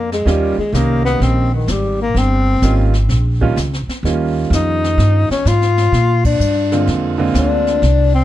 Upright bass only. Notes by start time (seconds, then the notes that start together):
Already playing: F2
0.26 D#2
0.58 muted upright bass stroke
0.72 C2
1.20 A#1
1.67 G#1
2.14 G1
2.62 G#1
3.09 A#1
3.56 C#2
3.87 muted upright bass stroke
4.03 D#2
4.50 F2
4.98 G2
5.30 muted upright bass stroke
5.45 G#2
5.92 A#2
6.39 G2
6.87 F2
7.34 D2
7.82 C2